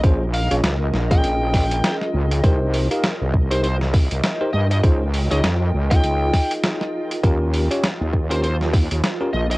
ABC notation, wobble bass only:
X:1
M:4/4
L:1/16
Q:"Swing 16ths" 1/4=100
K:Cphr
V:1 name="Wobble bass" clef=bass
B,,,3 B,,, D,,2 B,,,2 B,,,4 z2 D,,2 | C,,3 z2 C,,6 C,, z2 G,,2 | D,,3 D,, F,,2 D,,2 D,,2 z6 | E,,3 z2 E,,6 E,, z2 B,,,2 |]